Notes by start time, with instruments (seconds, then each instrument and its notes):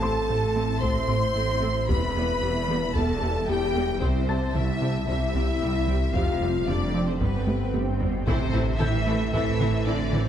Already playing: double bass section A1, sub bass A1, cello section A2, ambient pad A3 C4 E4 E5, french horn section A4, violin section A5
0.01 analog synth bass A2, viola section A3 C4, grand piano C5 C6
0.29 double bass section A1, cello section A2, analog synth bass A2, viola section A3 C4
0.56 analog synth bass A3, viola section A3 C4
0.81 double bass section A1, analog synth bass A2, cello section A2, viola section A3 C4, french horn section C5, violin section C6, taiko
1.08 analog synth bass A2, viola section A3 C4
1.35 double bass section A1, analog synth bass A2, cello section A2, viola section A3 C4
1.61 analog synth bass A2, viola section A3 C4
1.88 sub bass E1, double bass section E1, analog synth bass E2, cello section E2, ambient pad G3 B3, viola section G3 B3, french horn section B4, violin section B5, taiko
2.15 analog synth bass E2, viola section G3 B3
2.41 double bass section E1, cello section E2, analog synth bass E2, viola section G3 B3
2.68 analog synth bass E3, viola section G3 B3
2.95 double bass section E1, cello section E2, analog synth bass E2, viola section G3 B3, french horn section A4, violin section A5, taiko
3.22 analog synth bass E2, viola section G3 B3
3.48 double bass section E1, cello section E2, analog synth bass E2, viola section G3 B3, french horn section G4, violin section G5
3.75 analog synth bass E2, viola section G3 B3
4.00 double bass section C2, analog synth bass C2, cello section C2, sub bass C2, viola section G3 C4, french horn section C4, ambient pad C4 G4, violin section C5, taiko
4.27 analog synth bass C2, viola section G3 C4, grand piano A5 A6
4.54 cello section C2, double bass section C2, analog synth bass C2, viola section G3 C4, french horn section E4, violin section E5, taiko mid
4.82 analog synth bass C3, viola section G3 C4
5.07 analog synth bass C2, double bass section C2, cello section C2, viola section G3 C4, french horn section E4, violin section E5, taiko
5.34 analog synth bass C2, viola section G3 C4, taiko mid
5.61 cello section C2, double bass section C2, analog synth bass C2, viola section G3 C4
5.87 analog synth bass C2, viola section G3 C4, taiko mid
6.14 sub bass F1, double bass section F1, cello section F2, analog synth bass F2, viola section G3 C4, french horn section F4, ambient pad A4 G5, violin section F5, taiko, swell
6.41 analog synth bass F2, viola section G3 C4
6.67 double bass section F1, cello section F2, analog synth bass F2, viola section G3 C4, french horn section D4, violin section D5, taiko mid
6.94 analog synth bass F3, viola section G3 C4
7.07 french horn section C4, violin section C5
7.20 sub bass G1, double bass section G1, cello section G2, analog synth bass G2, viola section G3 B3, french horn section B3, ambient pad D4 G4, violin section B4, taiko
7.47 analog synth bass G2, viola section G3 B3, taiko high
7.74 double bass section G1, analog synth bass G2, cello section G2, viola section G3 B3, taiko high
8.00 analog synth bass G2, cello section B2, viola section G3 B3, taiko low
8.26 sub bass A1, double bass section A1, analog synth bass A2, cello section C3, trombone section E3 A3, viola section E3 C4, ambient pad C4 A4, french horn section C4 E4, violin section E4 A4 C5, taiko, impact
8.52 analog synth bass A2, viola section E3 C4, violin section E4 A4
8.78 double bass section A1, analog synth bass A2, viola section E3 C4, cello section E3, violin section E4 A4 E5, grand piano G6, taiko mid
9.06 viola section E3 C4, analog synth bass A3, violin section E4 A4
9.33 double bass section A1, analog synth bass A2, viola section E3 C4, cello section E3, violin section E4 A4 E5, taiko
9.60 analog synth bass A2, viola section E3 C4, violin section E4 A4, taiko mid
9.87 double bass section A1, analog synth bass A2, cello section D3, viola section E3 C4, violin section E4 A4 D5
10.12 analog synth bass A2, viola section E3 C4, violin section E4 A4, taiko mid